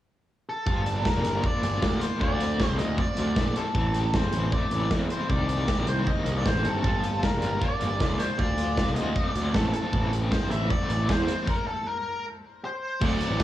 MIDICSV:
0, 0, Header, 1, 6, 480
1, 0, Start_track
1, 0, Key_signature, -2, "minor"
1, 0, Tempo, 385852
1, 826, Time_signature, 4, 2, 24, 8
1, 16711, End_track
2, 0, Start_track
2, 0, Title_t, "Lead electric guitar"
2, 0, Program_c, 0, 29
2, 614, Note_on_c, 0, 69, 74
2, 1322, Note_off_c, 0, 69, 0
2, 1327, Note_on_c, 0, 70, 69
2, 1765, Note_off_c, 0, 70, 0
2, 1815, Note_on_c, 0, 74, 87
2, 2510, Note_off_c, 0, 74, 0
2, 2515, Note_on_c, 0, 72, 73
2, 2736, Note_off_c, 0, 72, 0
2, 2752, Note_on_c, 0, 74, 86
2, 3325, Note_off_c, 0, 74, 0
2, 3325, Note_on_c, 0, 72, 86
2, 3457, Note_off_c, 0, 72, 0
2, 3462, Note_on_c, 0, 75, 77
2, 3708, Note_off_c, 0, 75, 0
2, 3713, Note_on_c, 0, 74, 91
2, 4439, Note_on_c, 0, 69, 74
2, 4454, Note_off_c, 0, 74, 0
2, 5106, Note_off_c, 0, 69, 0
2, 5161, Note_on_c, 0, 72, 80
2, 5604, Note_off_c, 0, 72, 0
2, 5633, Note_on_c, 0, 74, 89
2, 6080, Note_off_c, 0, 74, 0
2, 6364, Note_on_c, 0, 72, 75
2, 6587, Note_off_c, 0, 72, 0
2, 6592, Note_on_c, 0, 74, 84
2, 7318, Note_on_c, 0, 72, 80
2, 7335, Note_off_c, 0, 74, 0
2, 7552, Note_on_c, 0, 75, 93
2, 7564, Note_off_c, 0, 72, 0
2, 7922, Note_off_c, 0, 75, 0
2, 7927, Note_on_c, 0, 74, 75
2, 8039, Note_on_c, 0, 72, 82
2, 8044, Note_off_c, 0, 74, 0
2, 8289, Note_off_c, 0, 72, 0
2, 8289, Note_on_c, 0, 69, 73
2, 9005, Note_off_c, 0, 69, 0
2, 9010, Note_on_c, 0, 70, 78
2, 9488, Note_on_c, 0, 74, 94
2, 9497, Note_off_c, 0, 70, 0
2, 10183, Note_on_c, 0, 72, 80
2, 10223, Note_off_c, 0, 74, 0
2, 10423, Note_on_c, 0, 74, 92
2, 10437, Note_off_c, 0, 72, 0
2, 11100, Note_off_c, 0, 74, 0
2, 11140, Note_on_c, 0, 75, 87
2, 11381, Note_off_c, 0, 75, 0
2, 11381, Note_on_c, 0, 75, 98
2, 11518, Note_off_c, 0, 75, 0
2, 11518, Note_on_c, 0, 74, 98
2, 11870, Note_on_c, 0, 69, 87
2, 11882, Note_off_c, 0, 74, 0
2, 12100, Note_off_c, 0, 69, 0
2, 12115, Note_on_c, 0, 69, 84
2, 12561, Note_off_c, 0, 69, 0
2, 12826, Note_on_c, 0, 72, 85
2, 13064, Note_on_c, 0, 76, 93
2, 13078, Note_off_c, 0, 72, 0
2, 13292, Note_off_c, 0, 76, 0
2, 13321, Note_on_c, 0, 74, 95
2, 13764, Note_off_c, 0, 74, 0
2, 13815, Note_on_c, 0, 72, 94
2, 14251, Note_off_c, 0, 72, 0
2, 14295, Note_on_c, 0, 70, 85
2, 14513, Note_off_c, 0, 70, 0
2, 14518, Note_on_c, 0, 69, 80
2, 14761, Note_off_c, 0, 69, 0
2, 14761, Note_on_c, 0, 70, 70
2, 15236, Note_off_c, 0, 70, 0
2, 15736, Note_on_c, 0, 72, 74
2, 16217, Note_off_c, 0, 72, 0
2, 16220, Note_on_c, 0, 74, 83
2, 16698, Note_off_c, 0, 74, 0
2, 16711, End_track
3, 0, Start_track
3, 0, Title_t, "Distorted electric guitar"
3, 0, Program_c, 1, 30
3, 16181, Note_on_c, 1, 50, 74
3, 16213, Note_on_c, 1, 57, 88
3, 16711, Note_off_c, 1, 50, 0
3, 16711, Note_off_c, 1, 57, 0
3, 16711, End_track
4, 0, Start_track
4, 0, Title_t, "Overdriven electric guitar"
4, 0, Program_c, 2, 29
4, 831, Note_on_c, 2, 53, 64
4, 1077, Note_on_c, 2, 62, 68
4, 1317, Note_on_c, 2, 58, 63
4, 1547, Note_off_c, 2, 53, 0
4, 1561, Note_on_c, 2, 53, 56
4, 1786, Note_off_c, 2, 53, 0
4, 1801, Note_on_c, 2, 53, 61
4, 2031, Note_off_c, 2, 53, 0
4, 2046, Note_on_c, 2, 53, 62
4, 2267, Note_off_c, 2, 58, 0
4, 2274, Note_off_c, 2, 62, 0
4, 2282, Note_on_c, 2, 58, 55
4, 2506, Note_off_c, 2, 53, 0
4, 2521, Note_on_c, 2, 53, 61
4, 2739, Note_off_c, 2, 53, 0
4, 2754, Note_on_c, 2, 53, 69
4, 2756, Note_off_c, 2, 58, 0
4, 3002, Note_on_c, 2, 60, 64
4, 3235, Note_on_c, 2, 57, 60
4, 3461, Note_off_c, 2, 53, 0
4, 3476, Note_on_c, 2, 53, 63
4, 3703, Note_off_c, 2, 53, 0
4, 3717, Note_on_c, 2, 53, 62
4, 3941, Note_off_c, 2, 53, 0
4, 3956, Note_on_c, 2, 53, 61
4, 4182, Note_off_c, 2, 57, 0
4, 4197, Note_on_c, 2, 57, 58
4, 4427, Note_off_c, 2, 53, 0
4, 4441, Note_on_c, 2, 53, 61
4, 4671, Note_off_c, 2, 53, 0
4, 4675, Note_off_c, 2, 57, 0
4, 4676, Note_on_c, 2, 52, 66
4, 4908, Note_on_c, 2, 67, 68
4, 5140, Note_off_c, 2, 60, 0
4, 5145, Note_on_c, 2, 60, 60
4, 5367, Note_off_c, 2, 52, 0
4, 5382, Note_on_c, 2, 52, 63
4, 5632, Note_on_c, 2, 57, 61
4, 5855, Note_off_c, 2, 52, 0
4, 5870, Note_on_c, 2, 52, 63
4, 6099, Note_off_c, 2, 60, 0
4, 6114, Note_on_c, 2, 60, 59
4, 6336, Note_off_c, 2, 52, 0
4, 6351, Note_on_c, 2, 52, 61
4, 6590, Note_off_c, 2, 52, 0
4, 6594, Note_off_c, 2, 57, 0
4, 6594, Note_off_c, 2, 60, 0
4, 6595, Note_on_c, 2, 51, 72
4, 6834, Note_off_c, 2, 67, 0
4, 6839, Note_on_c, 2, 67, 67
4, 7074, Note_on_c, 2, 60, 61
4, 7308, Note_off_c, 2, 51, 0
4, 7323, Note_on_c, 2, 51, 63
4, 7563, Note_on_c, 2, 58, 62
4, 7784, Note_off_c, 2, 51, 0
4, 7799, Note_on_c, 2, 51, 61
4, 8020, Note_off_c, 2, 60, 0
4, 8035, Note_on_c, 2, 60, 62
4, 8037, Note_off_c, 2, 67, 0
4, 8256, Note_off_c, 2, 51, 0
4, 8271, Note_on_c, 2, 51, 58
4, 8513, Note_off_c, 2, 51, 0
4, 8515, Note_off_c, 2, 60, 0
4, 8520, Note_off_c, 2, 58, 0
4, 8528, Note_on_c, 2, 53, 66
4, 8767, Note_on_c, 2, 65, 60
4, 9002, Note_on_c, 2, 62, 62
4, 9224, Note_off_c, 2, 53, 0
4, 9239, Note_on_c, 2, 53, 60
4, 9476, Note_on_c, 2, 58, 64
4, 9706, Note_off_c, 2, 53, 0
4, 9721, Note_on_c, 2, 53, 64
4, 9948, Note_off_c, 2, 62, 0
4, 9961, Note_off_c, 2, 65, 0
4, 9963, Note_on_c, 2, 62, 61
4, 10185, Note_off_c, 2, 53, 0
4, 10200, Note_on_c, 2, 53, 64
4, 10421, Note_off_c, 2, 53, 0
4, 10436, Note_off_c, 2, 58, 0
4, 10436, Note_on_c, 2, 53, 64
4, 10439, Note_off_c, 2, 62, 0
4, 10675, Note_on_c, 2, 65, 63
4, 10913, Note_on_c, 2, 60, 62
4, 11145, Note_off_c, 2, 53, 0
4, 11160, Note_on_c, 2, 53, 62
4, 11400, Note_on_c, 2, 57, 65
4, 11623, Note_off_c, 2, 53, 0
4, 11638, Note_on_c, 2, 53, 65
4, 11875, Note_off_c, 2, 65, 0
4, 11881, Note_off_c, 2, 60, 0
4, 11886, Note_on_c, 2, 60, 61
4, 12110, Note_off_c, 2, 53, 0
4, 12125, Note_on_c, 2, 53, 62
4, 12345, Note_off_c, 2, 53, 0
4, 12350, Note_on_c, 2, 52, 68
4, 12357, Note_off_c, 2, 57, 0
4, 12600, Note_on_c, 2, 67, 63
4, 12834, Note_off_c, 2, 60, 0
4, 12839, Note_on_c, 2, 60, 67
4, 13067, Note_off_c, 2, 52, 0
4, 13082, Note_on_c, 2, 52, 64
4, 13316, Note_on_c, 2, 57, 65
4, 13539, Note_off_c, 2, 52, 0
4, 13554, Note_on_c, 2, 52, 64
4, 13778, Note_off_c, 2, 60, 0
4, 13793, Note_on_c, 2, 60, 61
4, 13796, Note_off_c, 2, 67, 0
4, 14022, Note_off_c, 2, 52, 0
4, 14036, Note_on_c, 2, 52, 64
4, 14273, Note_off_c, 2, 60, 0
4, 14274, Note_off_c, 2, 57, 0
4, 14275, Note_off_c, 2, 52, 0
4, 16176, Note_on_c, 2, 54, 88
4, 16195, Note_on_c, 2, 60, 92
4, 16206, Note_on_c, 2, 62, 90
4, 16222, Note_on_c, 2, 69, 91
4, 16711, Note_off_c, 2, 54, 0
4, 16711, Note_off_c, 2, 60, 0
4, 16711, Note_off_c, 2, 62, 0
4, 16711, Note_off_c, 2, 69, 0
4, 16711, End_track
5, 0, Start_track
5, 0, Title_t, "Picked electric bass"
5, 0, Program_c, 3, 34
5, 830, Note_on_c, 3, 31, 89
5, 1339, Note_off_c, 3, 31, 0
5, 1436, Note_on_c, 3, 29, 73
5, 1534, Note_off_c, 3, 29, 0
5, 1544, Note_on_c, 3, 31, 76
5, 1749, Note_off_c, 3, 31, 0
5, 2021, Note_on_c, 3, 31, 79
5, 2228, Note_off_c, 3, 31, 0
5, 2274, Note_on_c, 3, 38, 84
5, 2475, Note_off_c, 3, 38, 0
5, 2744, Note_on_c, 3, 38, 84
5, 3256, Note_off_c, 3, 38, 0
5, 3349, Note_on_c, 3, 36, 76
5, 3452, Note_off_c, 3, 36, 0
5, 3483, Note_on_c, 3, 38, 80
5, 3682, Note_off_c, 3, 38, 0
5, 3960, Note_on_c, 3, 38, 79
5, 4160, Note_off_c, 3, 38, 0
5, 4181, Note_on_c, 3, 34, 85
5, 4390, Note_off_c, 3, 34, 0
5, 4662, Note_on_c, 3, 33, 89
5, 5176, Note_off_c, 3, 33, 0
5, 5277, Note_on_c, 3, 31, 83
5, 5377, Note_off_c, 3, 31, 0
5, 5389, Note_on_c, 3, 33, 73
5, 5595, Note_off_c, 3, 33, 0
5, 5863, Note_on_c, 3, 33, 78
5, 6071, Note_off_c, 3, 33, 0
5, 6103, Note_on_c, 3, 40, 89
5, 6311, Note_off_c, 3, 40, 0
5, 6584, Note_on_c, 3, 36, 88
5, 7098, Note_off_c, 3, 36, 0
5, 7196, Note_on_c, 3, 34, 78
5, 7297, Note_off_c, 3, 34, 0
5, 7308, Note_on_c, 3, 36, 77
5, 7515, Note_off_c, 3, 36, 0
5, 7778, Note_on_c, 3, 36, 84
5, 7989, Note_off_c, 3, 36, 0
5, 8031, Note_on_c, 3, 33, 75
5, 8249, Note_off_c, 3, 33, 0
5, 8279, Note_on_c, 3, 31, 74
5, 8493, Note_off_c, 3, 31, 0
5, 8508, Note_on_c, 3, 31, 93
5, 9021, Note_off_c, 3, 31, 0
5, 9115, Note_on_c, 3, 29, 78
5, 9217, Note_off_c, 3, 29, 0
5, 9231, Note_on_c, 3, 31, 80
5, 9436, Note_off_c, 3, 31, 0
5, 9725, Note_on_c, 3, 31, 80
5, 9925, Note_off_c, 3, 31, 0
5, 9955, Note_on_c, 3, 37, 84
5, 10159, Note_off_c, 3, 37, 0
5, 10439, Note_on_c, 3, 38, 91
5, 10947, Note_off_c, 3, 38, 0
5, 11051, Note_on_c, 3, 36, 80
5, 11146, Note_off_c, 3, 36, 0
5, 11160, Note_on_c, 3, 38, 77
5, 11362, Note_off_c, 3, 38, 0
5, 11639, Note_on_c, 3, 38, 80
5, 11841, Note_off_c, 3, 38, 0
5, 11876, Note_on_c, 3, 33, 86
5, 12079, Note_off_c, 3, 33, 0
5, 12356, Note_on_c, 3, 33, 93
5, 12864, Note_off_c, 3, 33, 0
5, 12956, Note_on_c, 3, 31, 76
5, 13057, Note_off_c, 3, 31, 0
5, 13077, Note_on_c, 3, 33, 78
5, 13279, Note_off_c, 3, 33, 0
5, 13559, Note_on_c, 3, 33, 80
5, 13760, Note_off_c, 3, 33, 0
5, 13799, Note_on_c, 3, 40, 87
5, 14000, Note_off_c, 3, 40, 0
5, 16193, Note_on_c, 3, 38, 109
5, 16395, Note_off_c, 3, 38, 0
5, 16551, Note_on_c, 3, 33, 91
5, 16652, Note_off_c, 3, 33, 0
5, 16711, End_track
6, 0, Start_track
6, 0, Title_t, "Drums"
6, 829, Note_on_c, 9, 36, 105
6, 953, Note_off_c, 9, 36, 0
6, 1073, Note_on_c, 9, 42, 74
6, 1198, Note_off_c, 9, 42, 0
6, 1311, Note_on_c, 9, 36, 97
6, 1317, Note_on_c, 9, 38, 91
6, 1435, Note_off_c, 9, 36, 0
6, 1441, Note_off_c, 9, 38, 0
6, 1551, Note_on_c, 9, 42, 84
6, 1675, Note_off_c, 9, 42, 0
6, 1788, Note_on_c, 9, 36, 98
6, 1912, Note_off_c, 9, 36, 0
6, 2031, Note_on_c, 9, 42, 77
6, 2155, Note_off_c, 9, 42, 0
6, 2268, Note_on_c, 9, 36, 99
6, 2271, Note_on_c, 9, 38, 99
6, 2393, Note_off_c, 9, 36, 0
6, 2395, Note_off_c, 9, 38, 0
6, 2504, Note_on_c, 9, 42, 80
6, 2629, Note_off_c, 9, 42, 0
6, 2749, Note_on_c, 9, 36, 92
6, 2873, Note_off_c, 9, 36, 0
6, 2990, Note_on_c, 9, 42, 74
6, 3114, Note_off_c, 9, 42, 0
6, 3229, Note_on_c, 9, 36, 95
6, 3234, Note_on_c, 9, 38, 98
6, 3353, Note_off_c, 9, 36, 0
6, 3359, Note_off_c, 9, 38, 0
6, 3467, Note_on_c, 9, 42, 77
6, 3592, Note_off_c, 9, 42, 0
6, 3706, Note_on_c, 9, 36, 95
6, 3830, Note_off_c, 9, 36, 0
6, 3940, Note_on_c, 9, 42, 75
6, 4064, Note_off_c, 9, 42, 0
6, 4183, Note_on_c, 9, 36, 97
6, 4184, Note_on_c, 9, 38, 101
6, 4308, Note_off_c, 9, 36, 0
6, 4309, Note_off_c, 9, 38, 0
6, 4426, Note_on_c, 9, 42, 77
6, 4550, Note_off_c, 9, 42, 0
6, 4663, Note_on_c, 9, 36, 99
6, 4787, Note_off_c, 9, 36, 0
6, 4905, Note_on_c, 9, 42, 72
6, 5030, Note_off_c, 9, 42, 0
6, 5146, Note_on_c, 9, 36, 100
6, 5148, Note_on_c, 9, 38, 99
6, 5270, Note_off_c, 9, 36, 0
6, 5272, Note_off_c, 9, 38, 0
6, 5379, Note_on_c, 9, 42, 78
6, 5504, Note_off_c, 9, 42, 0
6, 5626, Note_on_c, 9, 36, 100
6, 5750, Note_off_c, 9, 36, 0
6, 5861, Note_on_c, 9, 42, 77
6, 5985, Note_off_c, 9, 42, 0
6, 6106, Note_on_c, 9, 36, 98
6, 6107, Note_on_c, 9, 38, 100
6, 6230, Note_off_c, 9, 36, 0
6, 6232, Note_off_c, 9, 38, 0
6, 6346, Note_on_c, 9, 42, 78
6, 6471, Note_off_c, 9, 42, 0
6, 6587, Note_on_c, 9, 36, 100
6, 6712, Note_off_c, 9, 36, 0
6, 6827, Note_on_c, 9, 42, 75
6, 6951, Note_off_c, 9, 42, 0
6, 7064, Note_on_c, 9, 38, 103
6, 7067, Note_on_c, 9, 36, 97
6, 7189, Note_off_c, 9, 38, 0
6, 7191, Note_off_c, 9, 36, 0
6, 7303, Note_on_c, 9, 42, 78
6, 7427, Note_off_c, 9, 42, 0
6, 7549, Note_on_c, 9, 36, 91
6, 7673, Note_off_c, 9, 36, 0
6, 7788, Note_on_c, 9, 42, 76
6, 7912, Note_off_c, 9, 42, 0
6, 8031, Note_on_c, 9, 36, 101
6, 8031, Note_on_c, 9, 38, 98
6, 8155, Note_off_c, 9, 36, 0
6, 8156, Note_off_c, 9, 38, 0
6, 8268, Note_on_c, 9, 42, 73
6, 8392, Note_off_c, 9, 42, 0
6, 8512, Note_on_c, 9, 36, 106
6, 8636, Note_off_c, 9, 36, 0
6, 8753, Note_on_c, 9, 42, 73
6, 8877, Note_off_c, 9, 42, 0
6, 8995, Note_on_c, 9, 36, 94
6, 8998, Note_on_c, 9, 38, 93
6, 9120, Note_off_c, 9, 36, 0
6, 9122, Note_off_c, 9, 38, 0
6, 9231, Note_on_c, 9, 42, 82
6, 9355, Note_off_c, 9, 42, 0
6, 9474, Note_on_c, 9, 36, 98
6, 9599, Note_off_c, 9, 36, 0
6, 9711, Note_on_c, 9, 42, 76
6, 9836, Note_off_c, 9, 42, 0
6, 9956, Note_on_c, 9, 36, 99
6, 9960, Note_on_c, 9, 38, 104
6, 10081, Note_off_c, 9, 36, 0
6, 10085, Note_off_c, 9, 38, 0
6, 10198, Note_on_c, 9, 42, 82
6, 10322, Note_off_c, 9, 42, 0
6, 10436, Note_on_c, 9, 36, 97
6, 10561, Note_off_c, 9, 36, 0
6, 10673, Note_on_c, 9, 42, 78
6, 10798, Note_off_c, 9, 42, 0
6, 10916, Note_on_c, 9, 36, 92
6, 10920, Note_on_c, 9, 38, 103
6, 11040, Note_off_c, 9, 36, 0
6, 11044, Note_off_c, 9, 38, 0
6, 11149, Note_on_c, 9, 42, 86
6, 11274, Note_off_c, 9, 42, 0
6, 11394, Note_on_c, 9, 36, 95
6, 11518, Note_off_c, 9, 36, 0
6, 11638, Note_on_c, 9, 42, 80
6, 11763, Note_off_c, 9, 42, 0
6, 11874, Note_on_c, 9, 36, 100
6, 11876, Note_on_c, 9, 38, 100
6, 11999, Note_off_c, 9, 36, 0
6, 12000, Note_off_c, 9, 38, 0
6, 12112, Note_on_c, 9, 42, 73
6, 12237, Note_off_c, 9, 42, 0
6, 12354, Note_on_c, 9, 36, 98
6, 12479, Note_off_c, 9, 36, 0
6, 12602, Note_on_c, 9, 42, 71
6, 12727, Note_off_c, 9, 42, 0
6, 12835, Note_on_c, 9, 36, 97
6, 12842, Note_on_c, 9, 38, 103
6, 12960, Note_off_c, 9, 36, 0
6, 12966, Note_off_c, 9, 38, 0
6, 13079, Note_on_c, 9, 42, 75
6, 13203, Note_off_c, 9, 42, 0
6, 13316, Note_on_c, 9, 36, 101
6, 13441, Note_off_c, 9, 36, 0
6, 13558, Note_on_c, 9, 42, 73
6, 13682, Note_off_c, 9, 42, 0
6, 13796, Note_on_c, 9, 36, 102
6, 13805, Note_on_c, 9, 38, 97
6, 13920, Note_off_c, 9, 36, 0
6, 13929, Note_off_c, 9, 38, 0
6, 14035, Note_on_c, 9, 42, 78
6, 14159, Note_off_c, 9, 42, 0
6, 14270, Note_on_c, 9, 49, 82
6, 14273, Note_on_c, 9, 36, 97
6, 14394, Note_off_c, 9, 49, 0
6, 14397, Note_off_c, 9, 36, 0
6, 16191, Note_on_c, 9, 36, 105
6, 16191, Note_on_c, 9, 49, 97
6, 16315, Note_off_c, 9, 49, 0
6, 16316, Note_off_c, 9, 36, 0
6, 16431, Note_on_c, 9, 42, 73
6, 16555, Note_off_c, 9, 42, 0
6, 16671, Note_on_c, 9, 36, 102
6, 16711, Note_off_c, 9, 36, 0
6, 16711, End_track
0, 0, End_of_file